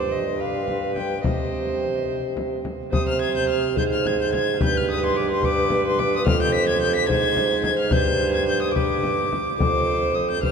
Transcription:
0.00 1.24 G2 medium
0.00 0.39 C5 medium
0.00 0.13 D5 medium
0.12 0.42 D#5 medium
0.39 1.25 B4 medium
0.39 0.95 F5 medium
0.68 frame drum soft
0.95 1.23 G5 medium
0.95 frame drum soft
1.23 2.62 C3 medium
1.23 2.72 C5 medium
1.23 2.07 D#5 medium
1.23 frame drum medium
2.37 frame drum medium
2.65 frame drum soft
2.92 3.78 C3 medium
2.92 3.72 C5 medium
2.92 3.06 D#6 loud
2.92 frame drum medium
3.09 3.21 F6 loud
3.22 3.35 G#6 loud
3.37 3.49 G6 loud
3.49 3.77 F6 medium
3.76 4.60 G#2 medium
3.76 4.63 C5 medium
3.76 3.83 G6 loud
3.76 frame drum soft
3.93 4.08 F6 loud
4.06 4.20 G#6 loud
4.06 frame drum medium
4.22 4.33 G6 medium
4.33 4.60 G#6 loud
4.33 frame drum medium
4.60 6.23 G2 medium
4.60 5.43 B4 medium
4.60 4.79 G6 loud
4.60 frame drum medium
4.77 4.89 F6 loud
4.91 5.03 D#6 loud
5.06 5.18 C6 medium
5.17 5.30 D6 loud
5.31 5.46 C6 loud
5.43 6.27 B4 medium
5.43 5.86 D6 loud
5.43 frame drum medium
5.70 frame drum medium
5.87 6.01 C6 loud
5.99 6.13 D6 loud
5.99 frame drum medium
6.16 6.26 D#6 loud
6.26 7.07 F2 loud
6.26 7.07 C5 medium
6.26 6.40 F6 loud
6.26 frame drum medium
6.42 6.54 G6 loud
6.55 6.68 B6 loud
6.69 6.82 G#6 loud
6.82 6.95 G6 loud
6.96 7.08 B6 loud
7.08 7.93 G#2 medium
7.08 7.90 C5 medium
7.08 7.63 G#6 loud
7.08 frame drum medium
7.37 frame drum medium
7.64 7.78 G#6 loud
7.64 frame drum medium
7.79 7.94 F6 loud
7.91 8.74 G2 medium
7.91 8.77 C5 medium
7.91 8.34 G6 loud
7.91 frame drum medium
8.35 8.48 G#6 loud
8.49 8.61 G6 loud
8.62 8.73 D#6 loud
8.74 9.30 G2 medium
8.74 9.40 B4 medium
8.74 9.57 D6 loud
8.74 frame drum soft
9.03 frame drum medium
9.33 frame drum medium
9.59 10.38 F2 medium
9.59 10.39 C5 medium
9.59 10.16 D6 loud
9.59 frame drum medium
10.15 10.29 D#6 medium
10.31 10.43 G6 loud
10.42 10.52 G2 medium
10.42 10.52 C5 medium
10.42 10.52 F6 loud
10.42 frame drum medium

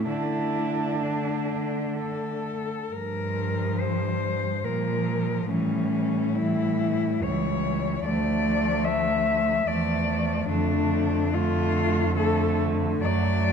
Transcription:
0.08 2.72 D3 soft
0.08 2.69 A3 soft
0.08 2.44 D4 medium
0.08 1.03 E4 medium
1.02 2.00 D4 soft
2.00 2.94 A4 medium
2.93 4.65 G2 medium
2.93 4.61 F3 soft
2.93 4.61 G3 medium
2.93 3.82 A#4 medium
3.80 4.66 C5 medium
4.64 5.49 A#2 soft
4.64 5.52 F3 soft
4.64 5.49 G3 soft
4.64 5.50 A#4 medium
5.50 7.24 A2 medium
5.50 6.36 E3 soft
5.50 6.34 G3 medium
5.50 6.37 C#4 medium
6.36 7.22 E3 medium
6.36 7.22 G3 medium
6.36 7.24 E4 medium
7.23 8.05 C#2 medium
7.23 8.07 E3 medium
7.23 8.04 G3 medium
7.23 8.05 C#5 medium
8.05 9.65 D2 medium
8.05 9.68 F3 medium
8.05 9.65 A3 medium
8.05 8.87 D5 medium
8.85 9.69 E5 medium
9.67 10.49 E2 medium
9.67 10.51 F3 medium
9.67 10.49 A3 medium
9.67 10.49 D5 medium
10.49 12.97 F2 medium
10.49 11.32 D3 medium
10.49 11.32 A3 medium
10.49 11.35 D4 medium
11.33 12.15 D3 medium
11.33 12.15 A3 medium
11.33 12.16 F4 medium
12.17 13.03 D3 medium
12.17 13.00 A3 medium
12.17 12.58 A4 medium
13.01 13.53 F#2 medium
13.01 13.53 F#3 medium
13.01 13.53 A3 medium
13.01 13.53 D5 loud

